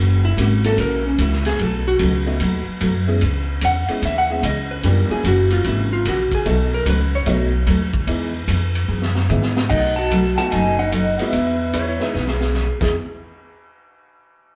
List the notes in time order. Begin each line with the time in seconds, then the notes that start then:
Already playing: F#1 C#3 E3 A#3 C#4 F#4
0.25 E4
0.37 G#1 C#3 E3 A#3 C#4 F#4, kick, hi-hat pedal, ride
0.41 F#4
0.64 F#3 A#3 C#4 E4 F#4 A4, ride
0.78 A#1 C#3 E3 A#3 C#4 F#4 A#4, kick, ride
1.06 C#4
1.18 C#2 C#3 E3 A#3 C#4 E4 F#4, kick, hi-hat pedal, ride
1.32 snare
1.45 G#4, snare, ride
1.59 B1 B2 F#3 A3 D#4 F#4 A4, kick, ride
1.88 F#4
1.99 C#2 B2 F#3 A3 D#4 F#4, kick, hi-hat pedal, ride
2.26 F#3 A3 B3 D#4 F#4
2.40 D#2 B2 F#3 A3 D#4 F#4, kick, ride
2.68 muted upright bass stroke
2.81 F#2 B2 F#3 A3 D#4 F#4, kick, hi-hat pedal, ride
3.07 G#3 B3 C#4 E4 G#4
3.21 C#2 C#3 E3 B3 C#4 G#4, kick, ride
3.61 E2 C#3 E3 B3 C#4 G#4 F#5, kick, hi-hat pedal, ride
3.88 G#3 B3 C#4 E4 G#4 D#5, muted upright bass stroke, ride
4.02 D#2 C#3 E3 B3 C#4 G#4 E5, kick, ride
4.18 F#5
4.30 G#3 B3 C#4 E4 G#4 E5
4.43 C#2 C#3 E3 B3 C#4 G#4 D#5, kick, hi-hat pedal, ride
4.71 B4
4.83 F#2 C#3 E3 G3 A#3 B3 C#4 D4 F4 F#4 G4, kick, ride
4.87 A#4
5.10 F#3 A#3 C#4 E4 F#4 G#4, muted upright bass stroke
5.24 F#1 C#3 E3 A#3 C#4 F#4, kick, hi-hat pedal, ride
5.50 F4, ride
5.64 G#1 C#3 E3 A#3 C#4 E4 F#4, kick, ride
5.93 F4
6.05 A#1 C#3 E3 A#3 C#4 F#4, kick, snare, hi-hat pedal, ride
6.32 G#4, muted upright bass stroke, kick, ride
6.45 B1 B2 F#3 A3 B3 D#4 F#4, kick, ride
6.49 A4
6.74 A#4
6.86 C#2 B2 F#3 A3 D#4 F#4 B4, kick, hi-hat pedal, ride
7.15 C#5
7.26 B1 B2 F#3 A3 B3 D#4 F#4 D#5, kick, ride
7.67 D#2 B2 F#3 A3 D#4 F#4, kick, hi-hat pedal, ride
7.94 kick
8.07 E2 E3 G#3 B3 D#4 E4 G#4, kick, ride
8.48 F2 E3 B3 D#4 G#4, kick, hi-hat pedal, ride
8.75 ride
8.88 F#2 E3 B3 D#4 G#4
9.02 snare
9.15 snare
9.29 G#2 E3 G#3 B3 D#4 E4 G#4, hi-hat pedal, high tom
9.42 snare
9.57 snare
9.70 B1 B2 F#3 A3 D#4 F#4 D#5 F#5, kick, crash
9.96 F#4 F#5 A5
10.11 B2 F#3 A3 D#4 F#4, kick, hi-hat pedal, ride
10.38 F#3 A3 B3 D#4 F#4 F#5 A5, ride
10.51 F#1 B2 F#3 A3 D#4 F#4 D#5 G#5, kick, ride
10.79 D#4 D#5 F#5
10.92 B2 F#3 A3 D#4 F#4 D#5 F#5, kick, hi-hat pedal, ride
11.19 G#3 B3 D#4 E4 F#4 B4 E5, ride
11.33 E2 E3 B3 D#4 G#4, kick, ride
11.73 E3 B3 D#4 E4 G#4 C#5, kick, hi-hat pedal, ride
11.88 E4 C#5
12.00 G#3 B3 D#4 E4 G#4 B4, snare
12.13 B1 E3 B3 D#4 G#4 B4, snare
12.27 G#4, snare
12.41 snare
12.54 E3 B3 D#4 G#4, snare, hi-hat pedal
12.81 E2 E3 B3 D#4 E4 G#4, kick, snare, crash